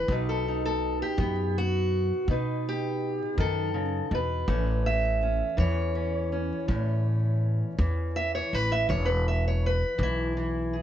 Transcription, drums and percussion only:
0, 0, Header, 1, 2, 480
1, 0, Start_track
1, 0, Tempo, 733586
1, 58, Time_signature, 12, 3, 24, 8
1, 7080, End_track
2, 0, Start_track
2, 0, Title_t, "Drums"
2, 54, Note_on_c, 9, 36, 64
2, 120, Note_off_c, 9, 36, 0
2, 772, Note_on_c, 9, 36, 67
2, 838, Note_off_c, 9, 36, 0
2, 1491, Note_on_c, 9, 36, 64
2, 1557, Note_off_c, 9, 36, 0
2, 2210, Note_on_c, 9, 36, 73
2, 2276, Note_off_c, 9, 36, 0
2, 2930, Note_on_c, 9, 36, 71
2, 2996, Note_off_c, 9, 36, 0
2, 3652, Note_on_c, 9, 36, 62
2, 3717, Note_off_c, 9, 36, 0
2, 4374, Note_on_c, 9, 36, 59
2, 4439, Note_off_c, 9, 36, 0
2, 5094, Note_on_c, 9, 36, 72
2, 5160, Note_off_c, 9, 36, 0
2, 5816, Note_on_c, 9, 36, 69
2, 5881, Note_off_c, 9, 36, 0
2, 6535, Note_on_c, 9, 36, 69
2, 6601, Note_off_c, 9, 36, 0
2, 7080, End_track
0, 0, End_of_file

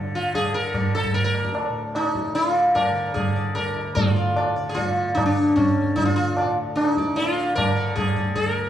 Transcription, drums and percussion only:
0, 0, Header, 1, 2, 480
1, 0, Start_track
1, 0, Tempo, 401338
1, 409, Time_signature, 3, 2, 24, 8
1, 10398, End_track
2, 0, Start_track
2, 0, Title_t, "Tabla"
2, 411, Note_on_c, 9, 60, 69
2, 411, Note_on_c, 9, 64, 67
2, 531, Note_off_c, 9, 60, 0
2, 531, Note_off_c, 9, 64, 0
2, 888, Note_on_c, 9, 60, 73
2, 888, Note_on_c, 9, 64, 62
2, 1008, Note_off_c, 9, 60, 0
2, 1008, Note_off_c, 9, 64, 0
2, 1136, Note_on_c, 9, 62, 55
2, 1248, Note_on_c, 9, 64, 53
2, 1255, Note_off_c, 9, 62, 0
2, 1368, Note_off_c, 9, 64, 0
2, 1368, Note_on_c, 9, 63, 72
2, 1368, Note_on_c, 9, 64, 57
2, 1488, Note_off_c, 9, 63, 0
2, 1488, Note_off_c, 9, 64, 0
2, 1607, Note_on_c, 9, 60, 57
2, 1727, Note_off_c, 9, 60, 0
2, 1730, Note_on_c, 9, 37, 62
2, 1850, Note_off_c, 9, 37, 0
2, 1851, Note_on_c, 9, 60, 70
2, 1971, Note_off_c, 9, 60, 0
2, 2333, Note_on_c, 9, 60, 71
2, 2453, Note_off_c, 9, 60, 0
2, 2574, Note_on_c, 9, 37, 47
2, 2693, Note_off_c, 9, 37, 0
2, 2811, Note_on_c, 9, 63, 66
2, 2931, Note_off_c, 9, 63, 0
2, 3300, Note_on_c, 9, 60, 72
2, 3300, Note_on_c, 9, 64, 68
2, 3419, Note_off_c, 9, 60, 0
2, 3419, Note_off_c, 9, 64, 0
2, 3781, Note_on_c, 9, 60, 70
2, 3781, Note_on_c, 9, 64, 68
2, 3901, Note_off_c, 9, 60, 0
2, 3901, Note_off_c, 9, 64, 0
2, 4029, Note_on_c, 9, 64, 45
2, 4148, Note_off_c, 9, 64, 0
2, 4262, Note_on_c, 9, 60, 70
2, 4262, Note_on_c, 9, 64, 61
2, 4382, Note_off_c, 9, 60, 0
2, 4382, Note_off_c, 9, 64, 0
2, 4503, Note_on_c, 9, 62, 52
2, 4623, Note_off_c, 9, 62, 0
2, 4743, Note_on_c, 9, 63, 107
2, 4743, Note_on_c, 9, 64, 94
2, 4862, Note_off_c, 9, 63, 0
2, 4862, Note_off_c, 9, 64, 0
2, 5219, Note_on_c, 9, 60, 75
2, 5339, Note_off_c, 9, 60, 0
2, 5712, Note_on_c, 9, 63, 68
2, 5712, Note_on_c, 9, 64, 70
2, 5832, Note_off_c, 9, 63, 0
2, 5832, Note_off_c, 9, 64, 0
2, 6188, Note_on_c, 9, 60, 79
2, 6188, Note_on_c, 9, 64, 65
2, 6307, Note_off_c, 9, 60, 0
2, 6307, Note_off_c, 9, 64, 0
2, 6664, Note_on_c, 9, 60, 72
2, 6664, Note_on_c, 9, 64, 68
2, 6784, Note_off_c, 9, 60, 0
2, 6784, Note_off_c, 9, 64, 0
2, 6904, Note_on_c, 9, 64, 47
2, 7024, Note_off_c, 9, 64, 0
2, 7145, Note_on_c, 9, 63, 70
2, 7145, Note_on_c, 9, 64, 66
2, 7264, Note_off_c, 9, 63, 0
2, 7264, Note_off_c, 9, 64, 0
2, 7614, Note_on_c, 9, 60, 76
2, 7734, Note_off_c, 9, 60, 0
2, 8098, Note_on_c, 9, 60, 80
2, 8218, Note_off_c, 9, 60, 0
2, 8339, Note_on_c, 9, 37, 61
2, 8458, Note_off_c, 9, 37, 0
2, 8582, Note_on_c, 9, 63, 78
2, 8701, Note_off_c, 9, 63, 0
2, 9064, Note_on_c, 9, 60, 82
2, 9064, Note_on_c, 9, 64, 71
2, 9183, Note_off_c, 9, 60, 0
2, 9183, Note_off_c, 9, 64, 0
2, 9533, Note_on_c, 9, 60, 78
2, 9533, Note_on_c, 9, 64, 66
2, 9653, Note_off_c, 9, 60, 0
2, 9653, Note_off_c, 9, 64, 0
2, 9775, Note_on_c, 9, 64, 45
2, 9895, Note_off_c, 9, 64, 0
2, 10004, Note_on_c, 9, 63, 79
2, 10004, Note_on_c, 9, 64, 71
2, 10124, Note_off_c, 9, 63, 0
2, 10124, Note_off_c, 9, 64, 0
2, 10398, End_track
0, 0, End_of_file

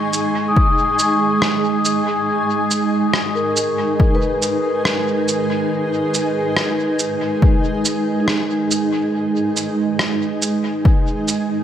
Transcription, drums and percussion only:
0, 0, Header, 1, 2, 480
1, 0, Start_track
1, 0, Key_signature, 5, "minor"
1, 0, Tempo, 857143
1, 1278, Time_signature, 4, 2, 24, 8
1, 6516, End_track
2, 0, Start_track
2, 0, Title_t, "Drums"
2, 73, Note_on_c, 9, 69, 46
2, 129, Note_off_c, 9, 69, 0
2, 316, Note_on_c, 9, 36, 93
2, 372, Note_off_c, 9, 36, 0
2, 554, Note_on_c, 9, 69, 46
2, 610, Note_off_c, 9, 69, 0
2, 794, Note_on_c, 9, 37, 72
2, 850, Note_off_c, 9, 37, 0
2, 1035, Note_on_c, 9, 69, 46
2, 1091, Note_off_c, 9, 69, 0
2, 1516, Note_on_c, 9, 69, 44
2, 1572, Note_off_c, 9, 69, 0
2, 1756, Note_on_c, 9, 37, 67
2, 1812, Note_off_c, 9, 37, 0
2, 1996, Note_on_c, 9, 69, 47
2, 2052, Note_off_c, 9, 69, 0
2, 2238, Note_on_c, 9, 36, 100
2, 2294, Note_off_c, 9, 36, 0
2, 2476, Note_on_c, 9, 69, 47
2, 2532, Note_off_c, 9, 69, 0
2, 2717, Note_on_c, 9, 37, 73
2, 2773, Note_off_c, 9, 37, 0
2, 2958, Note_on_c, 9, 69, 47
2, 3014, Note_off_c, 9, 69, 0
2, 3439, Note_on_c, 9, 69, 49
2, 3495, Note_off_c, 9, 69, 0
2, 3677, Note_on_c, 9, 37, 67
2, 3733, Note_off_c, 9, 37, 0
2, 3915, Note_on_c, 9, 69, 46
2, 3971, Note_off_c, 9, 69, 0
2, 4157, Note_on_c, 9, 36, 90
2, 4213, Note_off_c, 9, 36, 0
2, 4396, Note_on_c, 9, 69, 52
2, 4452, Note_off_c, 9, 69, 0
2, 4635, Note_on_c, 9, 37, 73
2, 4691, Note_off_c, 9, 37, 0
2, 4878, Note_on_c, 9, 69, 49
2, 4934, Note_off_c, 9, 69, 0
2, 5356, Note_on_c, 9, 69, 50
2, 5412, Note_off_c, 9, 69, 0
2, 5596, Note_on_c, 9, 37, 69
2, 5652, Note_off_c, 9, 37, 0
2, 5835, Note_on_c, 9, 69, 52
2, 5891, Note_off_c, 9, 69, 0
2, 6077, Note_on_c, 9, 36, 95
2, 6133, Note_off_c, 9, 36, 0
2, 6316, Note_on_c, 9, 69, 51
2, 6372, Note_off_c, 9, 69, 0
2, 6516, End_track
0, 0, End_of_file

